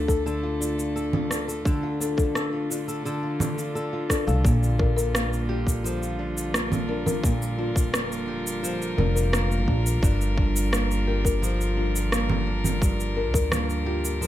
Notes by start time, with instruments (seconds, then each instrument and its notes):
Already playing: upright bass D2, nylon-string guitar D3 D4 F4, string quartet D3 A3 A4
0.08 marimba A4, nylon-string guitar A4, kick, shaker
0.26 nylon-string guitar D3 A4, shaker
0.43 nylon-string guitar F4
0.61 nylon-string guitar D4, marimba F4, shaker
0.78 nylon-string guitar F4, shaker
0.91 string quartet F4
0.96 nylon-string guitar A4, shaker
1.13 nylon-string guitar F4, low conga
1.31 nylon-string guitar D4, cross-stick, shaker
1.48 nylon-string guitar A4, shaker
1.65 nylon-string guitar D3 A4, kick, shaker
1.83 nylon-string guitar F4
2.00 nylon-string guitar D4, marimba A4, shaker
2.17 upright bass A1, nylon-string guitar F4, marimba A4, kick, shaker
2.35 nylon-string guitar A4, cross-stick, shaker
2.53 nylon-string guitar F4
2.70 nylon-string guitar D4, marimba F4, shaker
2.88 nylon-string guitar A4, shaker
3.05 nylon-string guitar D3 A4, shaker
3.23 nylon-string guitar F4
3.40 nylon-string guitar D4, low conga, shaker
3.58 nylon-string guitar F4, shaker
3.75 nylon-string guitar A4, shaker
3.93 nylon-string guitar F4
4.10 nylon-string guitar D4, marimba A4, kick, cross-stick, shaker
4.27 upright bass C2, nylon-string guitar A4, marimba F5, shaker
4.45 upright bass A#1, nylon-string guitar A#2, kick, shaker
4.63 shaker
4.79 nylon-string guitar D4, marimba A#4, kick
4.97 marimba A#4, shaker
5.14 nylon-string guitar A#3, cross-stick, shaker
5.21 string quartet G3
5.33 shaker
5.49 marimba F4, nylon-string guitar G4
5.67 kick, shaker
5.84 nylon-string guitar F3, shaker
6.03 shaker
6.19 nylon-string guitar D4
6.38 shaker
6.54 nylon-string guitar A#3, string quartet A#4, cross-stick, shaker
6.72 low conga, shaker
6.89 nylon-string guitar D4, marimba A#4
7.06 marimba A#4, low conga, shaker
7.23 nylon-string guitar A#2, kick, shaker
7.42 shaker
7.58 nylon-string guitar D4, marimba F4
7.76 upright bass F1, kick, shaker
7.93 nylon-string guitar A#3, cross-stick, shaker
8.12 shaker
8.28 nylon-string guitar G4
8.47 shaker
8.63 nylon-string guitar F3, shaker
8.82 shaker
8.98 upright bass F1, nylon-string guitar D4, marimba A#4, low conga
9.15 marimba A#4, shaker
9.33 nylon-string guitar A#3, cross-stick, shaker
9.52 shaker
9.68 upright bass A#1, nylon-string guitar D4, marimba F4, kick
9.86 shaker
10.03 upright bass G1, nylon-string guitar G2, kick, shaker
10.21 shaker
10.38 nylon-string guitar D4, kick
10.56 shaker
10.72 nylon-string guitar A#3, cross-stick, shaker
10.91 shaker
11.07 nylon-string guitar G4, marimba A#4
11.25 marimba A#4, kick, shaker
11.42 nylon-string guitar F3, shaker
11.61 shaker
11.77 nylon-string guitar D4, marimba F4
11.96 shaker
12.12 nylon-string guitar A#3, cross-stick, shaker
12.30 low conga
12.47 nylon-string guitar D4
12.64 low conga, shaker
12.82 nylon-string guitar G2, kick, shaker
13.00 shaker
13.17 nylon-string guitar D4, marimba A#4
13.34 upright bass D2, marimba A#4, kick, shaker
13.52 nylon-string guitar A#3, cross-stick, low conga, shaker
13.70 shaker
13.86 marimba F4, nylon-string guitar G4
14.05 shaker
14.21 nylon-string guitar F3, shaker